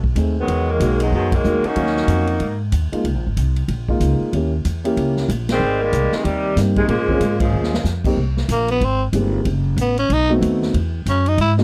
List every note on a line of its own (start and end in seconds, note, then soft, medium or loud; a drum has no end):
0.00 0.15 B1 medium
0.00 kick medium
0.15 0.47 D#2 medium
0.15 0.34 A3 soft
0.15 0.34 C4 soft
0.15 0.34 D#4 soft
0.15 0.34 G#4 medium
0.15 hi-hat pedal soft
0.15 ride medium
0.39 0.68 D#3 medium
0.39 0.68 F#3 medium
0.39 0.68 G#3 medium
0.39 0.68 B3 medium
0.48 0.79 E2 medium
0.48 kick soft
0.48 ride medium
0.71 1.02 D#3 medium
0.71 1.02 F#3 medium
0.71 1.01 G#3 medium
0.71 1.01 A#3 medium
0.80 1.11 B1 medium
0.80 0.98 G#3 medium
0.80 0.98 A#3 medium
0.80 0.99 D#4 soft
0.80 0.99 F#4 medium
0.80 kick soft
0.80 hi-hat pedal soft
0.80 ride medium
1.00 1.13 B2 medium
1.00 1.13 D#3 medium
1.00 1.13 F#3 medium
1.00 1.13 G#3 medium
1.00 ride medium
1.12 1.43 F#2 medium
1.12 1.32 B2 medium
1.12 1.32 D#3 medium
1.12 1.32 F#3 medium
1.12 1.32 G#3 medium
1.12 kick soft
1.32 1.65 D#3 medium
1.32 1.65 F#3 medium
1.32 1.65 G#3 medium
1.32 1.65 A#3 medium
1.32 kick medium
1.32 ride medium
1.44 1.63 E2 medium
1.44 1.62 G#3 soft
1.44 1.62 A#3 soft
1.44 1.63 D#4 soft
1.44 1.63 F#4 soft
1.44 hi-hat pedal medium
1.64 2.61 A#3 medium
1.64 2.41 C#4 medium
1.64 2.61 D#4 medium
1.64 2.61 F#4 medium
1.64 muted upright bass stroke soft
1.64 ride soft
1.76 2.07 D#2 medium
1.76 2.24 F#3 medium
1.76 2.24 A#3 soft
1.76 2.25 C#4 soft
1.76 2.25 F5 medium
1.76 kick soft
1.76 ride medium
1.86 snare soft
1.97 snare soft
2.07 2.39 F2 medium
2.07 kick soft
2.07 hi-hat pedal medium
2.07 ride medium
2.27 ride soft
2.40 2.71 G#2 medium
2.40 kick soft
2.40 ride medium
2.72 2.91 D#2 medium
2.72 kick soft
2.72 hi-hat pedal medium
2.72 ride medium
2.92 3.03 G#3 medium
2.92 3.03 A#3 soft
2.92 3.04 D#4 medium
2.92 3.04 F4 medium
2.92 muted upright bass stroke soft
2.92 ride soft
3.04 3.14 C#2 medium
3.04 kick soft
3.04 ride medium
3.14 3.25 A#1 soft
3.27 3.36 G#1 medium
3.37 3.68 C2 medium
3.37 kick soft
3.37 hi-hat pedal soft
3.37 ride medium
3.56 ride soft
3.68 3.99 A#1 medium
3.68 kick soft
3.68 ride medium
3.88 4.30 G#3 medium
3.88 4.30 A#3 medium
3.88 4.31 D#4 medium
3.88 4.31 F4 medium
3.88 kick soft
4.00 4.19 C#2 medium
4.00 kick soft
4.00 hi-hat pedal medium
4.00 ride medium
4.20 muted upright bass stroke soft
4.33 4.64 D#2 medium
4.33 4.51 A#3 soft
4.33 4.51 C#4 soft
4.33 4.51 E4 soft
4.33 4.52 G4 medium
4.33 kick soft
4.33 ride medium
4.65 4.96 E2 medium
4.65 kick soft
4.65 hi-hat pedal soft
4.65 ride medium
4.84 5.26 A#3 medium
4.84 5.26 C#4 medium
4.84 5.27 E4 medium
4.84 5.27 G4 medium
4.84 ride soft
4.96 5.28 C#2 medium
4.96 kick soft
4.96 ride medium
5.17 snare soft
5.28 5.59 A#1 medium
5.28 kick soft
5.28 hi-hat pedal medium
5.28 ride medium
5.49 5.80 D#3 medium
5.49 5.80 G3 medium
5.49 5.80 G#3 medium
5.49 5.80 C4 loud
5.49 snare medium
5.49 ride medium
5.60 5.91 G#1 medium
5.82 6.13 D#3 medium
5.82 6.13 G3 medium
5.82 6.13 G#3 medium
5.82 6.13 A#3 loud
5.92 6.11 C2 medium
5.92 kick soft
5.92 hi-hat pedal medium
5.92 ride medium
6.12 6.24 C3 medium
6.12 6.24 D#3 medium
6.12 6.26 G#3 medium
6.12 muted upright bass stroke soft
6.12 snare medium
6.24 6.56 D#2 medium
6.24 6.57 C3 medium
6.24 6.57 D#3 medium
6.24 6.57 G3 medium
6.24 kick soft
6.24 ride medium
6.56 6.87 G2 medium
6.56 6.88 A#3 medium
6.56 6.89 C4 soft
6.56 6.89 D#4 soft
6.56 6.89 G4 medium
6.56 kick soft
6.56 snare soft
6.56 hi-hat pedal medium
6.56 ride medium
6.76 6.88 C3 medium
6.76 6.88 D#3 medium
6.76 6.88 G#3 medium
6.76 kick medium
6.76 ride soft
6.88 6.99 A#2 medium
6.88 7.37 C#3 medium
6.88 7.37 F3 medium
6.88 7.37 G#3 medium
6.88 7.37 A#3 medium
6.88 kick soft
6.88 ride medium
6.99 7.09 G#2 medium
7.08 7.20 F2 medium
7.08 7.19 C4 medium
7.08 7.20 C#4 medium
7.08 7.20 F4 medium
7.08 7.20 G#4 medium
7.08 kick soft
7.20 7.51 G#2 medium
7.20 kick soft
7.20 hi-hat pedal medium
7.20 ride medium
7.40 7.85 A#2 medium
7.40 7.85 C#3 medium
7.40 7.85 F3 medium
7.40 7.85 G#3 medium
7.40 kick medium
7.40 ride medium
7.53 7.83 D#2 medium
7.63 snare medium
7.74 snare medium
7.84 8.15 F2 medium
7.84 snare medium
7.84 hi-hat pedal medium
8.04 8.16 G#2 medium
8.04 8.16 A#3 medium
8.04 8.16 C4 medium
8.04 8.16 D#4 medium
8.04 8.17 G4 medium
8.04 kick medium
8.04 crash medium
8.17 8.48 C2 medium
8.37 snare soft
8.48 8.80 A#1 medium
8.48 8.69 A#3 medium
8.48 kick soft
8.48 hi-hat pedal medium
8.48 ride medium
8.68 8.86 B3 medium
8.68 ride soft
8.81 9.12 G#1 medium
8.81 9.02 C4 medium
8.81 kick soft
8.81 ride soft
9.13 9.44 G1 medium
9.13 9.45 G#3 soft
9.13 9.45 A#3 soft
9.13 9.45 C4 soft
9.13 9.46 D#4 soft
9.13 9.46 G4 medium
9.13 kick soft
9.13 hi-hat pedal soft
9.13 ride medium
9.45 9.76 F#1 medium
9.45 kick soft
9.45 ride medium
9.77 10.08 A1 medium
9.77 kick soft
9.77 hi-hat pedal medium
9.77 ride medium
9.81 9.98 B3 medium
9.97 10.14 C#4 medium
9.97 ride soft
10.09 10.40 B1 medium
10.09 10.31 D#4 medium
10.09 kick soft
10.09 ride medium
10.30 10.71 A3 medium
10.30 10.71 B3 medium
10.30 10.71 C4 medium
10.30 10.72 D#4 medium
10.30 10.72 F#4 medium
10.41 10.72 D#2 medium
10.41 kick soft
10.41 hi-hat pedal soft
10.41 ride medium
10.62 snare soft
10.74 11.05 E2 medium
10.74 kick soft
10.74 ride medium
11.06 11.37 F#2 medium
11.06 11.29 C#4 medium
11.06 kick soft
11.06 hi-hat pedal medium
11.06 ride medium
11.26 11.39 D#4 medium
11.26 ride soft
11.37 11.64 G#2 medium
11.37 11.52 E4 medium
11.37 kick soft
11.37 ride medium
11.58 11.64 G#3 medium
11.58 11.64 A#3 medium
11.58 11.64 B3 medium
11.58 11.64 D#4 medium
11.58 11.64 F#4 medium
11.58 snare soft